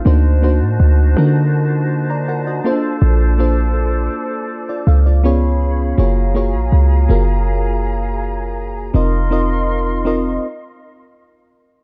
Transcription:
<<
  \new Staff \with { instrumentName = "Flute section" } { \time 4/4 \key d \phrygian \tempo 4 = 81 << { <c'' a''>1~ | <c'' a''>2. <des'' ces'''>4 | bes''1 | <ees'' c'''>2 r2 | } \\ { <fis' ees''>2.~ <fis' ees''>8 <a' d''>8~ | <a' d''>2. <aes' f''>4 | <aes' aes''>1 | <bes' f''>2 r2 | } >> }
  \new Staff \with { instrumentName = "FM electric piano" } { \time 4/4 \key d \phrygian << { r2 r8. <d'' bes''>16 <bes' fis''>16 <fis' ees''>8 r16 | r2 r16 <f' d''>16 <a' f''>16 <f' d''>8 r8. | r1 | r1 | } \\ { <bes d' ees' fis' c''>8 <bes d' ees' fis' c''>8 r8 <bes d' ees' f' fis' bes'>4. r8 <bes des' d' f' a' c''>8~ | <bes des' d' f' a' c''>8 <bes d' f' a' c''>8 r2 <ces' des' f' aes' des''>4 | <bes f' ges' aes' des''>8 <bes f' ges' aes' des''>8 r8 <bes f' ges' aes' bes'>4. r4 | <c' ees' f' bes' ees''>8 <c' ees' f' bes' ees''>8 r8 <c' ees' f' bes' ees''>8 r2 | } >> }
  \new Staff \with { instrumentName = "808-style bass" } { \clef bass \time 4/4 \key d \phrygian d,8. a,16 d,8 d2 r8 | bes,,4. r4 des,4. | ges,,8. bes,,16 des,8 ges,,2~ ges,,8 | f,,2 r2 | }
>>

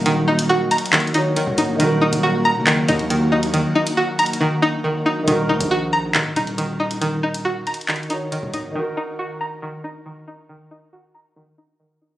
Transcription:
<<
  \new Staff \with { instrumentName = "Grand piano" } { \time 4/4 \key ees \minor \tempo 4 = 138 <ees ees' ges' bes'>2~ <ees ees' ges' bes'>8 <ees ees' ges' des''>4. | <ees ees' ges' bes'>1~ | <ees ees' ges' bes'>1 | <ees ees' ges' bes'>1~ |
<ees ees' ges' bes'>2~ <ees ees' ges' bes'>8 <ees ees' ges' des''>4. | <ees ees' ges' bes'>1~ | <ees ees' ges' bes'>1 | }
  \new Staff \with { instrumentName = "Synth pluck" } { \time 4/4 \key ees \minor <ees ees' bes''>8 ees'8 ges'8 bes''8 ees8 ees'8 ees8 ees'8 | ees8 ees'8 ges'8 bes''8 ees8 ees'8 ees8 ees'8 | ees8 ees'8 ges'8 bes''8 ees8 ees'8 ees8 ees'8 | ees8 ees'8 ges'8 bes''8 ees8 ees'8 ees8 ees'8 |
ees8 ees'8 ges'8 bes''8 ees8 ees'8 ees8 ees'8 | ees8 ees'8 ges'8 bes''8 ees8 ees'8 ees8 ees'8 | ees8 ees'8 ges'8 bes''8 ees8 ees'8 ees8 ees'8 | }
  \new Staff \with { instrumentName = "Analog synth pad" } { \time 4/4 \key ees \minor << { <ges bes ges'>1 | <ges bes ges'>1~ | <ges bes ges'>1 | r1 |
r1 | r1 | r1 | } \\ { ees1~ | ees1~ | ees1 | r1 |
r1 | r1 | r1 | } >> }
  \new Staff \with { instrumentName = "808-style bass" } { \clef bass \time 4/4 \key ees \minor ees,,4. r4. r16 ees,,16 des,,8 | ees,,8. ees,,4 ges,,8. ees,4.~ | ees,16 r2. r8. | ees,,8 ees,16 bes,,4~ bes,,16 des,,8 ees,,4.~ |
ees,,4. r4. r16 ees,,16 des,,8 | r1 | r1 | }
  \new DrumStaff \with { instrumentName = "Drums" } \drummode { \time 4/4 hh8. hh16 \tuplet 3/2 { r16 r16 r16 hh16 hh16 hh16 <hc hh>16 hh16 hh16 hh16 r16 r16 } hh8 hh8 | hh8. hh16 r4 <hc hh>8 hh16 hh16 hh8. hh16 | hh8. hh16 \tuplet 3/2 { r16 r16 r16 hh16 hh16 hh16 } r4 r4 | hh8. hh16 r4 <hc hh>8 hh16 hh16 hh8. hh16 |
hh8. hh16 \tuplet 3/2 { r16 r16 r16 hh16 hh16 hh16 <hc hh>16 hh16 hh16 hh16 r16 r16 } hh8 hh8 | r4 r4 r4 r4 | r4 r4 r4 r4 | }
>>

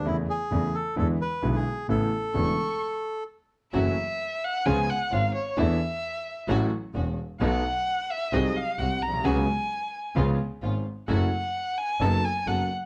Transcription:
<<
  \new Staff \with { instrumentName = "Violin" } { \time 4/4 \key a \major \tempo 4 = 131 r1 | r4 cis'''4 r2 | \key fis \minor e''4. fis''8 gis''8 fis''8 eis''8 cis''8 | e''2 r2 |
fis''4. e''8 dis''8 eis''8 fis''8 ais''8 | gis''2 r2 | fis''4. gis''8 a''8 gis''8 fis''8 r8 | }
  \new Staff \with { instrumentName = "Bandoneon" } { \time 4/4 \key a \major e'8 gis'4 a'8 a'8 b'8. gis'8. | a'2. r4 | \key fis \minor r1 | r1 |
r1 | r1 | r1 | }
  \new Staff \with { instrumentName = "String section" } { \time 4/4 \key a \major r1 | r1 | \key fis \minor <a e' fis'>8 r4. <b cis' eis'>8 r8 <b cis' eis'>8 r8 | <a d' e'>8 r4. <a cis' fis'>8 r8 <a cis' fis'>8 r8 |
<a b dis'>8 r4. <gis bis fis'>8 r8 <gis bis fis'>8 r8 | <b cis' fis'>8 r4. <b cis' eis'>8 r8 <b cis' eis'>8 r8 | <a e' fis'>8 r4. <b dis' a'>8 r8 <b dis' a'>8 r8 | }
  \new Staff \with { instrumentName = "Grand piano" } { \clef bass \time 4/4 \key a \major <e, cis e a e'>8 r8 <e, cis e a e'>8 r8 <e, d e gis b e'>8 r8 <b,, b, d gis b e'>8 r8 | <a,, a, cis a b e'>8 r8 <e,, e, cis a b e'>8 r2 r8 | \key fis \minor <fis, e fis a cis' fis'>8 r4. <cis, cis eis b cis' gis'>8 r8 <gis,, gis,>8 r8 | <e, e b d' a'>8 r4. <a,, a, fis cis' e' a'>8 r8 <e,, e,>8 r8 |
<b,, b, fis b dis' a'>8 r4. <bis,, bis, fis bis dis' gis'>8 r8 <bis,, bis,>8 r32 ais,,32 b,,32 bis,,32 | <cis, cis fis b cis' gis'>8 r4. <cis, cis eis b cis' gis'>8 r8 <gis,, gis,>8 r8 | <fis, fis cis' e' a'>8 r4. <fis, fis b dis' a'>8 r8 <fis, fis>8 r8 | }
  \new Staff \with { instrumentName = "Double bass" } { \clef bass \time 4/4 \key a \major e,8 r8 e,8 r8 e,8 r8 b,,8 r8 | a,,8 r8 e,,8 r2 r8 | \key fis \minor fis,,8 r4. cis,8 r8 gis,,8 r8 | e,8 r4. a,,8 r8 e,,8 r8 |
b,,8 r4. bis,,8 r8 bis,,8 b,,8 | cis,8 r4. cis,8 r8 gis,,8 r8 | fis,,8 r4. fis,,8 r8 fis,,8 r8 | }
>>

